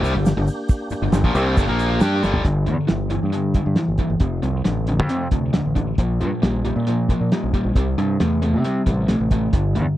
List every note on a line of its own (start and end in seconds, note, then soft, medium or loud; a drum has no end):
0.00 0.14 C2 medium
0.00 2.41 A#3 medium
0.00 2.41 D4 medium
0.00 2.41 G4 medium
0.04 0.15 C3 medium
0.04 0.15 G3 loud
0.04 open hi-hat medium
0.04 shaker medium
0.15 0.35 G1 medium
0.15 0.33 G2 medium
0.15 0.33 D3 medium
0.26 snare loud
0.26 open hi-hat medium
0.26 shaker loud
0.37 0.47 G1 medium
0.37 0.48 G2 medium
0.37 0.48 D3 medium
0.47 open hi-hat medium
0.47 shaker medium
0.69 kick loud
0.69 open hi-hat medium
0.69 shaker loud
0.90 muted fingered electric bass stroke soft
0.90 muted distorted electric guitar stroke medium
0.90 open hi-hat medium
0.90 shaker medium
1.02 1.12 G1 medium
1.02 1.12 G2 medium
1.02 1.13 D3 medium
1.12 1.23 G1 medium
1.12 1.25 G2 medium
1.12 1.24 D3 medium
1.12 snare loud
1.12 open hi-hat medium
1.12 shaker loud
1.24 1.34 A#1 medium
1.24 1.34 A#2 medium
1.24 1.35 F3 loud
1.24 kick loud
1.34 1.55 C2 loud
1.34 1.56 C3 medium
1.34 1.56 G3 medium
1.34 1.57 C4 loud
1.34 open hi-hat medium
1.34 shaker medium
1.57 1.68 G1 loud
1.57 1.68 G2 medium
1.57 1.67 D3 loud
1.57 kick loud
1.57 open hi-hat medium
1.57 shaker medium
1.68 1.99 A#1 medium
1.68 2.00 A#2 loud
1.68 2.00 F3 loud
1.68 2.01 A#3 loud
1.79 open hi-hat medium
1.79 shaker medium
2.00 2.22 G2 loud
2.00 2.22 G3 medium
2.00 2.22 D4 medium
2.00 2.23 G4 medium
2.00 snare loud
2.00 open hi-hat medium
2.00 shaker medium
2.22 2.44 G1 medium
2.22 2.43 G2 medium
2.22 2.43 D3 loud
2.22 2.44 G3 loud
2.22 snare medium
2.22 shaker medium
2.34 floor tom medium
2.44 2.69 G1 medium
2.44 2.64 G2 medium
2.44 2.64 D3 medium
2.44 kick loud
2.44 closed hi-hat medium
2.66 2.76 E2 medium
2.66 2.86 G2 medium
2.66 2.87 D3 medium
2.66 closed hi-hat soft
2.87 3.17 G1 medium
2.87 3.08 G2 medium
2.87 3.08 E3 medium
2.87 snare medium
2.87 closed hi-hat medium
3.10 3.30 G2 medium
3.10 3.31 E3 medium
3.10 closed hi-hat soft
3.23 3.59 G2 medium
3.33 3.53 G2 medium
3.33 3.53 D3 medium
3.33 closed hi-hat medium
3.54 3.75 G2 medium
3.54 3.76 D3 medium
3.54 kick medium
3.54 closed hi-hat medium
3.66 3.75 G2 medium
3.76 3.97 G2 medium
3.76 3.97 E3 medium
3.76 snare medium
3.76 closed hi-hat medium
3.88 3.97 G1 medium
3.98 4.19 G2 medium
3.98 4.19 E3 medium
3.98 kick medium
3.98 closed hi-hat soft
4.10 4.19 G1 medium
4.20 4.39 F1 medium
4.20 4.41 F2 medium
4.20 4.41 C3 medium
4.20 kick loud
4.20 closed hi-hat medium
4.43 4.61 C2 medium
4.43 4.63 F2 medium
4.43 4.63 C3 medium
4.43 closed hi-hat soft
4.65 5.00 A1 medium
4.65 4.85 F2 medium
4.65 4.85 D3 medium
4.65 snare medium
4.65 closed hi-hat medium
4.87 5.08 F2 medium
4.87 5.08 D3 medium
4.87 closed hi-hat medium
5.00 5.27 F2 medium
5.09 5.29 F2 medium
5.09 5.30 C3 medium
5.09 closed hi-hat medium
5.31 5.59 D2 medium
5.31 5.52 F2 medium
5.31 5.52 C3 medium
5.31 kick medium
5.31 closed hi-hat medium
5.53 5.74 F2 medium
5.53 5.74 D3 medium
5.53 snare loud
5.53 closed hi-hat medium
5.66 5.93 A1 medium
5.76 5.96 F2 medium
5.76 5.96 D3 medium
5.76 kick medium
5.76 closed hi-hat medium
5.98 6.22 A#1 medium
5.98 6.18 A#2 medium
5.98 6.19 F3 medium
5.98 kick loud
5.98 closed hi-hat medium
6.20 6.30 G2 medium
6.20 6.41 A#2 medium
6.20 6.41 F3 medium
6.20 closed hi-hat medium
6.42 6.70 A#1 medium
6.42 6.62 A#2 medium
6.42 6.63 G3 medium
6.42 snare loud
6.42 closed hi-hat medium
6.65 6.85 A#2 medium
6.65 6.85 G3 medium
6.65 closed hi-hat soft
6.76 7.13 A#2 medium
6.87 7.07 A#2 medium
6.87 7.08 F3 medium
6.87 closed hi-hat medium
7.09 7.30 A#2 medium
7.09 7.30 F3 medium
7.09 kick medium
7.09 closed hi-hat medium
7.21 7.30 A#2 medium
7.32 7.52 A#2 medium
7.32 7.52 G3 medium
7.32 snare medium
7.32 closed hi-hat medium
7.43 7.52 A#1 medium
7.53 7.74 A#2 medium
7.53 7.74 G3 medium
7.53 kick medium
7.53 closed hi-hat soft
7.65 7.74 A#1 medium
7.75 7.94 C2 medium
7.75 7.96 C3 medium
7.75 7.96 G3 medium
7.75 kick loud
7.75 closed hi-hat medium
7.98 8.16 G2 medium
7.98 8.18 C3 medium
7.98 8.18 G3 medium
7.98 closed hi-hat soft
8.20 8.55 E2 medium
8.20 8.40 C3 medium
8.20 8.40 A3 medium
8.20 snare medium
8.20 closed hi-hat medium
8.42 8.62 C3 medium
8.42 8.63 A3 medium
8.42 closed hi-hat medium
8.53 8.81 C3 medium
8.64 8.85 C3 medium
8.64 8.85 G3 medium
8.64 closed hi-hat medium
8.86 9.14 A1 medium
8.86 9.07 C3 medium
8.86 9.07 G3 medium
8.86 kick medium
8.86 closed hi-hat medium
9.08 9.29 C3 medium
9.08 9.29 A3 medium
9.08 snare medium
9.08 closed hi-hat medium
9.20 9.48 A1 medium
9.31 9.52 C3 medium
9.31 9.52 A3 medium
9.31 kick medium
9.31 closed hi-hat medium
9.53 9.77 G1 medium
9.53 9.74 G2 medium
9.53 9.74 D3 medium
9.53 kick loud
9.53 closed hi-hat medium
9.75 9.85 E2 medium
9.75 9.96 G2 medium
9.75 9.96 D3 medium
9.75 closed hi-hat medium